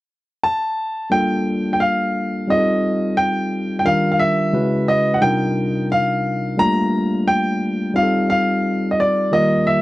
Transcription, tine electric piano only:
1.10 2.45 G3 medium
1.10 2.45 A#3 soft
1.10 2.45 D4 medium
1.10 2.46 F4 medium
1.10 2.46 A4 medium
2.47 3.82 G3 medium
2.47 3.82 C4 medium
2.47 3.83 D#4 medium
2.47 3.83 F4 medium
2.47 2.57 G#4 medium
2.57 3.87 A4 medium
3.84 4.53 D#3 medium
3.84 4.53 G3 medium
3.84 4.53 D4 medium
3.84 4.54 F4 medium
3.84 4.54 A#4 medium
4.53 5.22 C#3 medium
4.53 5.22 G#3 medium
4.53 5.22 C#4 medium
4.53 5.22 E4 medium
4.53 5.22 F#4 medium
4.53 5.22 B4 medium
5.20 6.55 C3 medium
5.20 6.55 G3 medium
5.20 6.56 D4 medium
5.20 6.56 D#4 medium
5.20 6.56 F4 medium
5.20 6.56 A#4 medium
6.57 7.92 G3 medium
6.57 7.93 A3 medium
6.57 7.92 A#3 medium
6.57 7.92 D4 medium
6.57 7.93 F4 medium
7.94 9.28 G3 medium
7.94 9.29 C4 soft
7.94 9.29 D#4 medium
7.94 9.29 F4 medium
7.94 8.03 G4 soft
8.03 9.33 A4 medium
9.32 9.82 D#3 medium
9.32 9.82 G3 medium
9.32 9.82 A#3 medium
9.32 9.82 F4 medium
9.32 9.82 A#4 medium

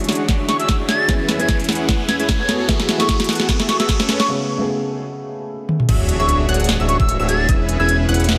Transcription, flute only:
0.49 0.57 C#6 medium
0.60 0.76 E6 medium
0.89 1.13 A6 medium
1.40 1.56 G#6 medium
2.09 2.16 G#6 medium
2.20 2.26 G#6 medium
2.40 2.53 G#6 medium
3.00 3.16 C#6 medium
3.69 3.77 C#6 medium
3.79 3.96 E6 medium
4.19 4.29 C#6 medium
6.19 6.36 C#6 medium
6.89 6.97 C#6 medium
7.00 7.16 E6 medium
7.29 7.53 A6 medium
7.80 7.96 G#6 medium

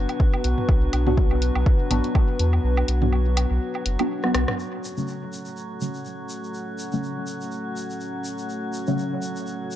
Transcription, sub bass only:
0.44 0.55 B1 medium
0.69 0.88 B1 loud
0.93 1.51 B1 medium
1.55 1.64 B1 medium
1.91 2.01 A1 loud
2.39 2.59 E2 medium
2.64 2.83 B1 loud
2.88 3.46 B1 medium
3.51 3.59 B1 medium
3.86 3.96 F#1 loud
4.35 4.45 B1 medium

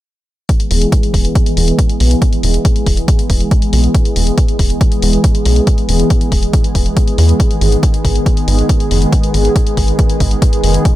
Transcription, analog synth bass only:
0.71 0.86 E1 medium
1.14 1.29 E1 medium
1.57 1.72 E1 medium
2.00 2.15 B1 medium
2.43 2.58 E1 medium
2.87 3.01 E1 medium
3.30 3.45 E1 medium
3.73 3.88 B1 medium
4.16 4.31 E1 medium
4.59 4.74 E1 medium
5.03 5.17 E1 medium
5.46 5.60 B1 medium
5.89 6.04 E1 medium
6.32 6.47 E1 medium
6.75 6.90 E1 medium
7.18 7.33 E2 medium
7.61 7.76 G#1 medium
8.05 8.19 G#1 medium
8.48 8.63 G#1 medium
8.91 9.06 F#1 medium
9.34 9.49 G#1 medium
9.77 9.92 G#1 medium
10.20 10.35 G#1 medium
10.63 10.78 F#1 medium

